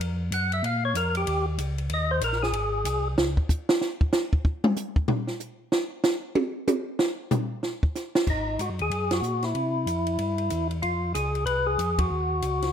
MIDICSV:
0, 0, Header, 1, 4, 480
1, 0, Start_track
1, 0, Tempo, 318640
1, 966, Time_signature, 4, 2, 24, 8
1, 19167, End_track
2, 0, Start_track
2, 0, Title_t, "Tonewheel organ"
2, 0, Program_c, 0, 16
2, 507, Note_on_c, 0, 78, 85
2, 785, Note_off_c, 0, 78, 0
2, 805, Note_on_c, 0, 76, 107
2, 970, Note_off_c, 0, 76, 0
2, 985, Note_on_c, 0, 77, 104
2, 1263, Note_off_c, 0, 77, 0
2, 1280, Note_on_c, 0, 73, 102
2, 1447, Note_off_c, 0, 73, 0
2, 1459, Note_on_c, 0, 70, 88
2, 1739, Note_off_c, 0, 70, 0
2, 1763, Note_on_c, 0, 67, 96
2, 2196, Note_off_c, 0, 67, 0
2, 2914, Note_on_c, 0, 75, 94
2, 3178, Note_on_c, 0, 72, 102
2, 3184, Note_off_c, 0, 75, 0
2, 3351, Note_off_c, 0, 72, 0
2, 3374, Note_on_c, 0, 70, 88
2, 3653, Note_off_c, 0, 70, 0
2, 3653, Note_on_c, 0, 68, 86
2, 4641, Note_off_c, 0, 68, 0
2, 12503, Note_on_c, 0, 63, 73
2, 12970, Note_on_c, 0, 66, 75
2, 12981, Note_off_c, 0, 63, 0
2, 13100, Note_off_c, 0, 66, 0
2, 13280, Note_on_c, 0, 68, 89
2, 13751, Note_on_c, 0, 66, 81
2, 13760, Note_off_c, 0, 68, 0
2, 14223, Note_on_c, 0, 64, 90
2, 14237, Note_off_c, 0, 66, 0
2, 16084, Note_off_c, 0, 64, 0
2, 16304, Note_on_c, 0, 65, 87
2, 16760, Note_off_c, 0, 65, 0
2, 16788, Note_on_c, 0, 68, 91
2, 17243, Note_off_c, 0, 68, 0
2, 17260, Note_on_c, 0, 71, 97
2, 17572, Note_on_c, 0, 68, 100
2, 17580, Note_off_c, 0, 71, 0
2, 18053, Note_on_c, 0, 66, 93
2, 18074, Note_off_c, 0, 68, 0
2, 19167, Note_off_c, 0, 66, 0
2, 19167, End_track
3, 0, Start_track
3, 0, Title_t, "Tonewheel organ"
3, 0, Program_c, 1, 16
3, 0, Note_on_c, 1, 41, 95
3, 463, Note_off_c, 1, 41, 0
3, 463, Note_on_c, 1, 42, 96
3, 938, Note_off_c, 1, 42, 0
3, 942, Note_on_c, 1, 46, 95
3, 1416, Note_off_c, 1, 46, 0
3, 1420, Note_on_c, 1, 41, 86
3, 1894, Note_off_c, 1, 41, 0
3, 1911, Note_on_c, 1, 39, 84
3, 2379, Note_off_c, 1, 39, 0
3, 2383, Note_on_c, 1, 37, 90
3, 2854, Note_off_c, 1, 37, 0
3, 2857, Note_on_c, 1, 39, 91
3, 3330, Note_off_c, 1, 39, 0
3, 3332, Note_on_c, 1, 34, 94
3, 3803, Note_on_c, 1, 32, 86
3, 3807, Note_off_c, 1, 34, 0
3, 4282, Note_off_c, 1, 32, 0
3, 4285, Note_on_c, 1, 36, 90
3, 4763, Note_off_c, 1, 36, 0
3, 4782, Note_on_c, 1, 37, 93
3, 5075, Note_off_c, 1, 37, 0
3, 12452, Note_on_c, 1, 32, 73
3, 12927, Note_off_c, 1, 32, 0
3, 12939, Note_on_c, 1, 44, 72
3, 13094, Note_on_c, 1, 42, 51
3, 13100, Note_off_c, 1, 44, 0
3, 13256, Note_on_c, 1, 39, 63
3, 13263, Note_off_c, 1, 42, 0
3, 13405, Note_on_c, 1, 42, 78
3, 13412, Note_off_c, 1, 39, 0
3, 13885, Note_off_c, 1, 42, 0
3, 13887, Note_on_c, 1, 46, 81
3, 14367, Note_off_c, 1, 46, 0
3, 14382, Note_on_c, 1, 48, 79
3, 14853, Note_on_c, 1, 41, 81
3, 14855, Note_off_c, 1, 48, 0
3, 15331, Note_off_c, 1, 41, 0
3, 15344, Note_on_c, 1, 43, 78
3, 15818, Note_off_c, 1, 43, 0
3, 15840, Note_on_c, 1, 40, 84
3, 16307, Note_off_c, 1, 40, 0
3, 16317, Note_on_c, 1, 41, 72
3, 16786, Note_off_c, 1, 41, 0
3, 16795, Note_on_c, 1, 37, 84
3, 17258, Note_on_c, 1, 36, 79
3, 17266, Note_off_c, 1, 37, 0
3, 17738, Note_off_c, 1, 36, 0
3, 17752, Note_on_c, 1, 41, 83
3, 18226, Note_off_c, 1, 41, 0
3, 18235, Note_on_c, 1, 39, 77
3, 18708, Note_off_c, 1, 39, 0
3, 18720, Note_on_c, 1, 37, 78
3, 19167, Note_off_c, 1, 37, 0
3, 19167, End_track
4, 0, Start_track
4, 0, Title_t, "Drums"
4, 12, Note_on_c, 9, 51, 67
4, 163, Note_off_c, 9, 51, 0
4, 483, Note_on_c, 9, 44, 52
4, 483, Note_on_c, 9, 51, 71
4, 633, Note_off_c, 9, 44, 0
4, 633, Note_off_c, 9, 51, 0
4, 783, Note_on_c, 9, 51, 48
4, 933, Note_off_c, 9, 51, 0
4, 964, Note_on_c, 9, 51, 67
4, 1115, Note_off_c, 9, 51, 0
4, 1435, Note_on_c, 9, 44, 62
4, 1435, Note_on_c, 9, 51, 77
4, 1586, Note_off_c, 9, 44, 0
4, 1586, Note_off_c, 9, 51, 0
4, 1728, Note_on_c, 9, 51, 57
4, 1879, Note_off_c, 9, 51, 0
4, 1911, Note_on_c, 9, 51, 75
4, 2062, Note_off_c, 9, 51, 0
4, 2387, Note_on_c, 9, 44, 61
4, 2387, Note_on_c, 9, 51, 70
4, 2538, Note_off_c, 9, 44, 0
4, 2538, Note_off_c, 9, 51, 0
4, 2684, Note_on_c, 9, 51, 46
4, 2835, Note_off_c, 9, 51, 0
4, 2855, Note_on_c, 9, 51, 67
4, 3006, Note_off_c, 9, 51, 0
4, 3335, Note_on_c, 9, 44, 63
4, 3335, Note_on_c, 9, 51, 78
4, 3486, Note_off_c, 9, 44, 0
4, 3486, Note_off_c, 9, 51, 0
4, 3504, Note_on_c, 9, 38, 29
4, 3654, Note_off_c, 9, 38, 0
4, 3663, Note_on_c, 9, 38, 51
4, 3813, Note_off_c, 9, 38, 0
4, 3818, Note_on_c, 9, 51, 70
4, 3969, Note_off_c, 9, 51, 0
4, 4296, Note_on_c, 9, 44, 65
4, 4296, Note_on_c, 9, 51, 75
4, 4447, Note_off_c, 9, 44, 0
4, 4447, Note_off_c, 9, 51, 0
4, 4787, Note_on_c, 9, 38, 108
4, 4938, Note_off_c, 9, 38, 0
4, 5079, Note_on_c, 9, 36, 74
4, 5230, Note_off_c, 9, 36, 0
4, 5262, Note_on_c, 9, 36, 78
4, 5263, Note_on_c, 9, 44, 60
4, 5412, Note_off_c, 9, 36, 0
4, 5414, Note_off_c, 9, 44, 0
4, 5560, Note_on_c, 9, 38, 114
4, 5710, Note_off_c, 9, 38, 0
4, 5744, Note_on_c, 9, 38, 59
4, 5895, Note_off_c, 9, 38, 0
4, 6039, Note_on_c, 9, 36, 85
4, 6190, Note_off_c, 9, 36, 0
4, 6213, Note_on_c, 9, 44, 57
4, 6216, Note_on_c, 9, 38, 96
4, 6364, Note_off_c, 9, 44, 0
4, 6367, Note_off_c, 9, 38, 0
4, 6519, Note_on_c, 9, 36, 81
4, 6670, Note_off_c, 9, 36, 0
4, 6700, Note_on_c, 9, 36, 85
4, 6851, Note_off_c, 9, 36, 0
4, 6989, Note_on_c, 9, 47, 110
4, 7139, Note_off_c, 9, 47, 0
4, 7175, Note_on_c, 9, 44, 62
4, 7178, Note_on_c, 9, 47, 40
4, 7326, Note_off_c, 9, 44, 0
4, 7329, Note_off_c, 9, 47, 0
4, 7473, Note_on_c, 9, 36, 84
4, 7624, Note_off_c, 9, 36, 0
4, 7653, Note_on_c, 9, 43, 111
4, 7804, Note_off_c, 9, 43, 0
4, 7946, Note_on_c, 9, 38, 45
4, 8096, Note_off_c, 9, 38, 0
4, 8133, Note_on_c, 9, 44, 57
4, 8283, Note_off_c, 9, 44, 0
4, 8616, Note_on_c, 9, 38, 97
4, 8767, Note_off_c, 9, 38, 0
4, 9091, Note_on_c, 9, 44, 65
4, 9094, Note_on_c, 9, 38, 112
4, 9242, Note_off_c, 9, 44, 0
4, 9245, Note_off_c, 9, 38, 0
4, 9571, Note_on_c, 9, 48, 110
4, 9722, Note_off_c, 9, 48, 0
4, 10054, Note_on_c, 9, 44, 59
4, 10057, Note_on_c, 9, 48, 106
4, 10205, Note_off_c, 9, 44, 0
4, 10208, Note_off_c, 9, 48, 0
4, 10531, Note_on_c, 9, 38, 103
4, 10681, Note_off_c, 9, 38, 0
4, 11010, Note_on_c, 9, 44, 62
4, 11013, Note_on_c, 9, 43, 114
4, 11160, Note_off_c, 9, 44, 0
4, 11163, Note_off_c, 9, 43, 0
4, 11493, Note_on_c, 9, 38, 57
4, 11643, Note_off_c, 9, 38, 0
4, 11795, Note_on_c, 9, 36, 78
4, 11945, Note_off_c, 9, 36, 0
4, 11980, Note_on_c, 9, 44, 63
4, 11983, Note_on_c, 9, 38, 40
4, 12131, Note_off_c, 9, 44, 0
4, 12134, Note_off_c, 9, 38, 0
4, 12282, Note_on_c, 9, 38, 106
4, 12433, Note_off_c, 9, 38, 0
4, 12460, Note_on_c, 9, 36, 61
4, 12461, Note_on_c, 9, 49, 59
4, 12611, Note_off_c, 9, 36, 0
4, 12611, Note_off_c, 9, 49, 0
4, 12943, Note_on_c, 9, 44, 58
4, 12943, Note_on_c, 9, 51, 59
4, 13093, Note_off_c, 9, 44, 0
4, 13093, Note_off_c, 9, 51, 0
4, 13243, Note_on_c, 9, 51, 42
4, 13393, Note_off_c, 9, 51, 0
4, 13428, Note_on_c, 9, 51, 59
4, 13579, Note_off_c, 9, 51, 0
4, 13720, Note_on_c, 9, 51, 54
4, 13723, Note_on_c, 9, 38, 71
4, 13870, Note_off_c, 9, 51, 0
4, 13873, Note_off_c, 9, 38, 0
4, 13906, Note_on_c, 9, 44, 49
4, 14057, Note_off_c, 9, 44, 0
4, 14199, Note_on_c, 9, 51, 38
4, 14202, Note_on_c, 9, 38, 34
4, 14350, Note_off_c, 9, 51, 0
4, 14353, Note_off_c, 9, 38, 0
4, 14383, Note_on_c, 9, 51, 49
4, 14534, Note_off_c, 9, 51, 0
4, 14870, Note_on_c, 9, 44, 59
4, 14870, Note_on_c, 9, 51, 57
4, 15020, Note_off_c, 9, 44, 0
4, 15020, Note_off_c, 9, 51, 0
4, 15163, Note_on_c, 9, 51, 42
4, 15314, Note_off_c, 9, 51, 0
4, 15344, Note_on_c, 9, 51, 59
4, 15494, Note_off_c, 9, 51, 0
4, 15638, Note_on_c, 9, 51, 41
4, 15788, Note_off_c, 9, 51, 0
4, 15821, Note_on_c, 9, 44, 52
4, 15821, Note_on_c, 9, 51, 60
4, 15971, Note_off_c, 9, 44, 0
4, 15971, Note_off_c, 9, 51, 0
4, 16129, Note_on_c, 9, 51, 39
4, 16280, Note_off_c, 9, 51, 0
4, 16308, Note_on_c, 9, 51, 51
4, 16459, Note_off_c, 9, 51, 0
4, 16796, Note_on_c, 9, 44, 59
4, 16796, Note_on_c, 9, 51, 64
4, 16947, Note_off_c, 9, 44, 0
4, 16947, Note_off_c, 9, 51, 0
4, 17098, Note_on_c, 9, 51, 43
4, 17249, Note_off_c, 9, 51, 0
4, 17272, Note_on_c, 9, 51, 62
4, 17422, Note_off_c, 9, 51, 0
4, 17759, Note_on_c, 9, 44, 53
4, 17759, Note_on_c, 9, 51, 61
4, 17910, Note_off_c, 9, 44, 0
4, 17910, Note_off_c, 9, 51, 0
4, 18054, Note_on_c, 9, 51, 63
4, 18055, Note_on_c, 9, 36, 71
4, 18205, Note_off_c, 9, 51, 0
4, 18206, Note_off_c, 9, 36, 0
4, 18715, Note_on_c, 9, 44, 60
4, 18715, Note_on_c, 9, 51, 64
4, 18865, Note_off_c, 9, 44, 0
4, 18865, Note_off_c, 9, 51, 0
4, 19017, Note_on_c, 9, 51, 44
4, 19020, Note_on_c, 9, 38, 41
4, 19167, Note_off_c, 9, 38, 0
4, 19167, Note_off_c, 9, 51, 0
4, 19167, End_track
0, 0, End_of_file